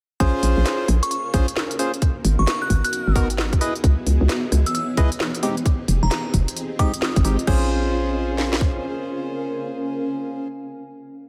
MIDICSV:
0, 0, Header, 1, 7, 480
1, 0, Start_track
1, 0, Tempo, 454545
1, 213, Time_signature, 4, 2, 24, 8
1, 11921, End_track
2, 0, Start_track
2, 0, Title_t, "Synth bell"
2, 0, Program_c, 0, 98
2, 1085, Note_on_c, 0, 85, 90
2, 1141, Note_off_c, 0, 85, 0
2, 1172, Note_on_c, 0, 85, 81
2, 1270, Note_off_c, 0, 85, 0
2, 2524, Note_on_c, 0, 85, 90
2, 2581, Note_off_c, 0, 85, 0
2, 2612, Note_on_c, 0, 85, 74
2, 2710, Note_off_c, 0, 85, 0
2, 2764, Note_on_c, 0, 90, 89
2, 2852, Note_off_c, 0, 90, 0
2, 3004, Note_on_c, 0, 90, 92
2, 3333, Note_off_c, 0, 90, 0
2, 4926, Note_on_c, 0, 88, 90
2, 4982, Note_off_c, 0, 88, 0
2, 5013, Note_on_c, 0, 88, 82
2, 5111, Note_off_c, 0, 88, 0
2, 6366, Note_on_c, 0, 82, 89
2, 6422, Note_off_c, 0, 82, 0
2, 6453, Note_on_c, 0, 82, 78
2, 6551, Note_off_c, 0, 82, 0
2, 7174, Note_on_c, 0, 87, 97
2, 7654, Note_off_c, 0, 87, 0
2, 11921, End_track
3, 0, Start_track
3, 0, Title_t, "Ambient pad"
3, 0, Program_c, 1, 92
3, 216, Note_on_c, 1, 61, 86
3, 345, Note_on_c, 1, 70, 96
3, 347, Note_on_c, 1, 77, 86
3, 2133, Note_on_c, 1, 59, 94
3, 2207, Note_on_c, 1, 66, 98
3, 2360, Note_on_c, 1, 75, 89
3, 2781, Note_off_c, 1, 70, 0
3, 2819, Note_off_c, 1, 61, 0
3, 2819, Note_off_c, 1, 77, 0
3, 3982, Note_on_c, 1, 52, 97
3, 4309, Note_on_c, 1, 73, 84
3, 4594, Note_off_c, 1, 66, 0
3, 4594, Note_off_c, 1, 75, 0
3, 5733, Note_off_c, 1, 59, 0
3, 5734, Note_off_c, 1, 52, 0
3, 5734, Note_off_c, 1, 73, 0
3, 5735, Note_on_c, 1, 60, 79
3, 5956, Note_on_c, 1, 65, 79
3, 6090, Note_on_c, 1, 75, 97
3, 7893, Note_off_c, 1, 65, 0
3, 7893, Note_off_c, 1, 75, 0
3, 7894, Note_off_c, 1, 60, 0
3, 7894, Note_on_c, 1, 61, 81
3, 7983, Note_on_c, 1, 70, 88
3, 8064, Note_on_c, 1, 77, 72
3, 8117, Note_on_c, 1, 80, 76
3, 11068, Note_off_c, 1, 61, 0
3, 11157, Note_off_c, 1, 70, 0
3, 11238, Note_off_c, 1, 77, 0
3, 11291, Note_off_c, 1, 80, 0
3, 11921, End_track
4, 0, Start_track
4, 0, Title_t, "String machine"
4, 0, Program_c, 2, 50
4, 211, Note_on_c, 2, 61, 83
4, 212, Note_on_c, 2, 65, 75
4, 212, Note_on_c, 2, 68, 75
4, 212, Note_on_c, 2, 72, 100
4, 2113, Note_off_c, 2, 61, 0
4, 2113, Note_off_c, 2, 68, 0
4, 2113, Note_off_c, 2, 72, 0
4, 2114, Note_off_c, 2, 65, 0
4, 2132, Note_on_c, 2, 59, 89
4, 2132, Note_on_c, 2, 63, 80
4, 2132, Note_on_c, 2, 66, 77
4, 2132, Note_on_c, 2, 70, 94
4, 3796, Note_off_c, 2, 63, 0
4, 3796, Note_off_c, 2, 66, 0
4, 3796, Note_off_c, 2, 70, 0
4, 3814, Note_on_c, 2, 63, 80
4, 3814, Note_on_c, 2, 64, 75
4, 3815, Note_on_c, 2, 68, 94
4, 5697, Note_off_c, 2, 59, 0
4, 5715, Note_off_c, 2, 64, 0
4, 5715, Note_off_c, 2, 68, 0
4, 5733, Note_on_c, 2, 60, 84
4, 5733, Note_on_c, 2, 68, 93
4, 5734, Note_on_c, 2, 67, 77
4, 7853, Note_off_c, 2, 63, 0
4, 7872, Note_off_c, 2, 60, 0
4, 7872, Note_off_c, 2, 67, 0
4, 7872, Note_off_c, 2, 68, 0
4, 7893, Note_on_c, 2, 68, 83
4, 7893, Note_on_c, 2, 72, 96
4, 7894, Note_on_c, 2, 61, 86
4, 7894, Note_on_c, 2, 65, 75
4, 11067, Note_off_c, 2, 68, 0
4, 11067, Note_off_c, 2, 72, 0
4, 11068, Note_off_c, 2, 61, 0
4, 11068, Note_off_c, 2, 65, 0
4, 11921, End_track
5, 0, Start_track
5, 0, Title_t, "Synth stab"
5, 0, Program_c, 3, 62
5, 212, Note_on_c, 3, 61, 104
5, 212, Note_on_c, 3, 65, 95
5, 212, Note_on_c, 3, 68, 101
5, 213, Note_on_c, 3, 72, 117
5, 933, Note_off_c, 3, 61, 0
5, 933, Note_off_c, 3, 65, 0
5, 933, Note_off_c, 3, 68, 0
5, 933, Note_off_c, 3, 72, 0
5, 1413, Note_on_c, 3, 61, 95
5, 1413, Note_on_c, 3, 65, 87
5, 1413, Note_on_c, 3, 68, 90
5, 1413, Note_on_c, 3, 72, 105
5, 1547, Note_off_c, 3, 61, 0
5, 1547, Note_off_c, 3, 65, 0
5, 1547, Note_off_c, 3, 72, 0
5, 1548, Note_off_c, 3, 68, 0
5, 1892, Note_on_c, 3, 61, 74
5, 1892, Note_on_c, 3, 65, 69
5, 1892, Note_on_c, 3, 68, 72
5, 1892, Note_on_c, 3, 72, 88
5, 2027, Note_off_c, 3, 61, 0
5, 2027, Note_off_c, 3, 65, 0
5, 2027, Note_off_c, 3, 68, 0
5, 2027, Note_off_c, 3, 72, 0
5, 3332, Note_on_c, 3, 63, 86
5, 3333, Note_on_c, 3, 59, 99
5, 3333, Note_on_c, 3, 66, 91
5, 3333, Note_on_c, 3, 70, 110
5, 3467, Note_off_c, 3, 59, 0
5, 3467, Note_off_c, 3, 63, 0
5, 3467, Note_off_c, 3, 66, 0
5, 3467, Note_off_c, 3, 70, 0
5, 3812, Note_on_c, 3, 64, 78
5, 3812, Note_on_c, 3, 75, 89
5, 3813, Note_on_c, 3, 68, 68
5, 3813, Note_on_c, 3, 71, 70
5, 3947, Note_off_c, 3, 64, 0
5, 3947, Note_off_c, 3, 68, 0
5, 3947, Note_off_c, 3, 71, 0
5, 3947, Note_off_c, 3, 75, 0
5, 5253, Note_on_c, 3, 64, 97
5, 5253, Note_on_c, 3, 68, 85
5, 5253, Note_on_c, 3, 71, 87
5, 5253, Note_on_c, 3, 75, 104
5, 5387, Note_off_c, 3, 64, 0
5, 5387, Note_off_c, 3, 68, 0
5, 5387, Note_off_c, 3, 71, 0
5, 5387, Note_off_c, 3, 75, 0
5, 5733, Note_on_c, 3, 56, 73
5, 5733, Note_on_c, 3, 60, 71
5, 5733, Note_on_c, 3, 63, 70
5, 5733, Note_on_c, 3, 67, 90
5, 5867, Note_off_c, 3, 56, 0
5, 5867, Note_off_c, 3, 60, 0
5, 5867, Note_off_c, 3, 63, 0
5, 5867, Note_off_c, 3, 67, 0
5, 7173, Note_on_c, 3, 56, 92
5, 7173, Note_on_c, 3, 60, 91
5, 7173, Note_on_c, 3, 63, 90
5, 7173, Note_on_c, 3, 67, 107
5, 7307, Note_off_c, 3, 60, 0
5, 7307, Note_off_c, 3, 63, 0
5, 7307, Note_off_c, 3, 67, 0
5, 7308, Note_off_c, 3, 56, 0
5, 7653, Note_on_c, 3, 56, 77
5, 7653, Note_on_c, 3, 60, 71
5, 7653, Note_on_c, 3, 63, 71
5, 7653, Note_on_c, 3, 67, 82
5, 7787, Note_off_c, 3, 56, 0
5, 7787, Note_off_c, 3, 60, 0
5, 7787, Note_off_c, 3, 63, 0
5, 7787, Note_off_c, 3, 67, 0
5, 7893, Note_on_c, 3, 61, 93
5, 7893, Note_on_c, 3, 65, 83
5, 7893, Note_on_c, 3, 68, 83
5, 7893, Note_on_c, 3, 72, 102
5, 11067, Note_off_c, 3, 61, 0
5, 11067, Note_off_c, 3, 65, 0
5, 11067, Note_off_c, 3, 68, 0
5, 11067, Note_off_c, 3, 72, 0
5, 11921, End_track
6, 0, Start_track
6, 0, Title_t, "FM bass"
6, 0, Program_c, 4, 39
6, 213, Note_on_c, 4, 34, 104
6, 345, Note_off_c, 4, 34, 0
6, 452, Note_on_c, 4, 34, 87
6, 584, Note_off_c, 4, 34, 0
6, 605, Note_on_c, 4, 34, 91
6, 681, Note_off_c, 4, 34, 0
6, 934, Note_on_c, 4, 34, 95
6, 1065, Note_off_c, 4, 34, 0
6, 1413, Note_on_c, 4, 34, 102
6, 1544, Note_off_c, 4, 34, 0
6, 2372, Note_on_c, 4, 32, 90
6, 2504, Note_off_c, 4, 32, 0
6, 2525, Note_on_c, 4, 32, 93
6, 2601, Note_off_c, 4, 32, 0
6, 2852, Note_on_c, 4, 32, 91
6, 2984, Note_off_c, 4, 32, 0
6, 3246, Note_on_c, 4, 32, 82
6, 3794, Note_off_c, 4, 32, 0
6, 4053, Note_on_c, 4, 37, 103
6, 4184, Note_off_c, 4, 37, 0
6, 4293, Note_on_c, 4, 37, 85
6, 4425, Note_off_c, 4, 37, 0
6, 4446, Note_on_c, 4, 37, 100
6, 4522, Note_off_c, 4, 37, 0
6, 4773, Note_on_c, 4, 37, 92
6, 4905, Note_off_c, 4, 37, 0
6, 5253, Note_on_c, 4, 37, 109
6, 5384, Note_off_c, 4, 37, 0
6, 6212, Note_on_c, 4, 29, 92
6, 6344, Note_off_c, 4, 29, 0
6, 6365, Note_on_c, 4, 29, 100
6, 6441, Note_off_c, 4, 29, 0
6, 6693, Note_on_c, 4, 29, 97
6, 6824, Note_off_c, 4, 29, 0
6, 7565, Note_on_c, 4, 32, 102
6, 7641, Note_off_c, 4, 32, 0
6, 7653, Note_on_c, 4, 32, 102
6, 7784, Note_off_c, 4, 32, 0
6, 7892, Note_on_c, 4, 34, 96
6, 9291, Note_off_c, 4, 34, 0
6, 11921, End_track
7, 0, Start_track
7, 0, Title_t, "Drums"
7, 213, Note_on_c, 9, 36, 119
7, 213, Note_on_c, 9, 42, 62
7, 319, Note_off_c, 9, 36, 0
7, 319, Note_off_c, 9, 42, 0
7, 452, Note_on_c, 9, 46, 106
7, 558, Note_off_c, 9, 46, 0
7, 693, Note_on_c, 9, 38, 115
7, 693, Note_on_c, 9, 42, 67
7, 798, Note_off_c, 9, 38, 0
7, 798, Note_off_c, 9, 42, 0
7, 933, Note_on_c, 9, 37, 55
7, 933, Note_on_c, 9, 46, 112
7, 1038, Note_off_c, 9, 37, 0
7, 1038, Note_off_c, 9, 46, 0
7, 1085, Note_on_c, 9, 42, 70
7, 1172, Note_off_c, 9, 42, 0
7, 1172, Note_on_c, 9, 42, 68
7, 1278, Note_off_c, 9, 42, 0
7, 1412, Note_on_c, 9, 46, 111
7, 1413, Note_on_c, 9, 36, 110
7, 1517, Note_off_c, 9, 46, 0
7, 1518, Note_off_c, 9, 36, 0
7, 1564, Note_on_c, 9, 42, 69
7, 1652, Note_on_c, 9, 38, 118
7, 1670, Note_off_c, 9, 42, 0
7, 1758, Note_off_c, 9, 38, 0
7, 1804, Note_on_c, 9, 42, 54
7, 1892, Note_on_c, 9, 46, 115
7, 1910, Note_off_c, 9, 42, 0
7, 1997, Note_off_c, 9, 46, 0
7, 2044, Note_on_c, 9, 42, 36
7, 2131, Note_off_c, 9, 42, 0
7, 2131, Note_on_c, 9, 42, 68
7, 2132, Note_on_c, 9, 36, 120
7, 2237, Note_off_c, 9, 42, 0
7, 2238, Note_off_c, 9, 36, 0
7, 2371, Note_on_c, 9, 46, 102
7, 2477, Note_off_c, 9, 46, 0
7, 2612, Note_on_c, 9, 38, 120
7, 2612, Note_on_c, 9, 42, 66
7, 2717, Note_off_c, 9, 38, 0
7, 2717, Note_off_c, 9, 42, 0
7, 2852, Note_on_c, 9, 36, 62
7, 2852, Note_on_c, 9, 46, 103
7, 2958, Note_off_c, 9, 36, 0
7, 2958, Note_off_c, 9, 46, 0
7, 3004, Note_on_c, 9, 42, 66
7, 3092, Note_off_c, 9, 42, 0
7, 3092, Note_on_c, 9, 42, 66
7, 3198, Note_off_c, 9, 42, 0
7, 3332, Note_on_c, 9, 36, 116
7, 3332, Note_on_c, 9, 46, 111
7, 3438, Note_off_c, 9, 36, 0
7, 3438, Note_off_c, 9, 46, 0
7, 3486, Note_on_c, 9, 42, 62
7, 3573, Note_on_c, 9, 38, 124
7, 3591, Note_off_c, 9, 42, 0
7, 3678, Note_off_c, 9, 38, 0
7, 3725, Note_on_c, 9, 36, 106
7, 3726, Note_on_c, 9, 42, 53
7, 3813, Note_on_c, 9, 46, 115
7, 3830, Note_off_c, 9, 36, 0
7, 3831, Note_off_c, 9, 42, 0
7, 3919, Note_off_c, 9, 46, 0
7, 3965, Note_on_c, 9, 42, 34
7, 4053, Note_off_c, 9, 42, 0
7, 4053, Note_on_c, 9, 36, 127
7, 4053, Note_on_c, 9, 42, 66
7, 4159, Note_off_c, 9, 36, 0
7, 4159, Note_off_c, 9, 42, 0
7, 4293, Note_on_c, 9, 46, 96
7, 4399, Note_off_c, 9, 46, 0
7, 4533, Note_on_c, 9, 38, 120
7, 4533, Note_on_c, 9, 42, 59
7, 4639, Note_off_c, 9, 38, 0
7, 4639, Note_off_c, 9, 42, 0
7, 4773, Note_on_c, 9, 37, 59
7, 4773, Note_on_c, 9, 46, 106
7, 4879, Note_off_c, 9, 37, 0
7, 4879, Note_off_c, 9, 46, 0
7, 4925, Note_on_c, 9, 42, 62
7, 5013, Note_off_c, 9, 42, 0
7, 5013, Note_on_c, 9, 42, 63
7, 5118, Note_off_c, 9, 42, 0
7, 5252, Note_on_c, 9, 46, 106
7, 5253, Note_on_c, 9, 36, 127
7, 5358, Note_off_c, 9, 36, 0
7, 5358, Note_off_c, 9, 46, 0
7, 5405, Note_on_c, 9, 42, 64
7, 5491, Note_on_c, 9, 38, 127
7, 5510, Note_off_c, 9, 42, 0
7, 5597, Note_off_c, 9, 38, 0
7, 5645, Note_on_c, 9, 42, 51
7, 5732, Note_on_c, 9, 46, 111
7, 5750, Note_off_c, 9, 42, 0
7, 5838, Note_off_c, 9, 46, 0
7, 5885, Note_on_c, 9, 42, 36
7, 5973, Note_off_c, 9, 42, 0
7, 5973, Note_on_c, 9, 36, 124
7, 5973, Note_on_c, 9, 42, 62
7, 6078, Note_off_c, 9, 42, 0
7, 6079, Note_off_c, 9, 36, 0
7, 6212, Note_on_c, 9, 46, 96
7, 6318, Note_off_c, 9, 46, 0
7, 6452, Note_on_c, 9, 38, 115
7, 6452, Note_on_c, 9, 42, 63
7, 6558, Note_off_c, 9, 38, 0
7, 6558, Note_off_c, 9, 42, 0
7, 6692, Note_on_c, 9, 46, 107
7, 6693, Note_on_c, 9, 36, 63
7, 6797, Note_off_c, 9, 46, 0
7, 6798, Note_off_c, 9, 36, 0
7, 6845, Note_on_c, 9, 42, 66
7, 6933, Note_off_c, 9, 42, 0
7, 6933, Note_on_c, 9, 42, 68
7, 7038, Note_off_c, 9, 42, 0
7, 7172, Note_on_c, 9, 46, 104
7, 7173, Note_on_c, 9, 36, 118
7, 7278, Note_off_c, 9, 36, 0
7, 7278, Note_off_c, 9, 46, 0
7, 7324, Note_on_c, 9, 42, 67
7, 7412, Note_on_c, 9, 38, 127
7, 7430, Note_off_c, 9, 42, 0
7, 7517, Note_off_c, 9, 38, 0
7, 7564, Note_on_c, 9, 42, 52
7, 7565, Note_on_c, 9, 36, 112
7, 7651, Note_on_c, 9, 46, 108
7, 7670, Note_off_c, 9, 36, 0
7, 7670, Note_off_c, 9, 42, 0
7, 7757, Note_off_c, 9, 46, 0
7, 7804, Note_on_c, 9, 42, 34
7, 7892, Note_on_c, 9, 36, 112
7, 7892, Note_on_c, 9, 49, 85
7, 7909, Note_off_c, 9, 42, 0
7, 7997, Note_off_c, 9, 49, 0
7, 7998, Note_off_c, 9, 36, 0
7, 8853, Note_on_c, 9, 38, 64
7, 8958, Note_off_c, 9, 38, 0
7, 9005, Note_on_c, 9, 38, 77
7, 9093, Note_on_c, 9, 36, 98
7, 9111, Note_off_c, 9, 38, 0
7, 9199, Note_off_c, 9, 36, 0
7, 11921, End_track
0, 0, End_of_file